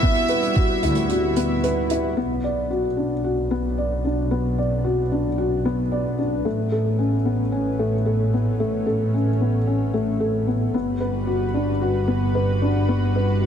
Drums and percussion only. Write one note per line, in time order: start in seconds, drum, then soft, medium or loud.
0.02 kick medium
0.15 closed hi-hat soft
0.28 closed hi-hat medium
0.43 closed hi-hat soft
0.55 kick loud
0.55 closed hi-hat medium
0.83 closed hi-hat medium
0.95 closed hi-hat medium
1.09 closed hi-hat medium
1.36 closed hi-hat medium
1.64 closed hi-hat medium
1.90 closed hi-hat medium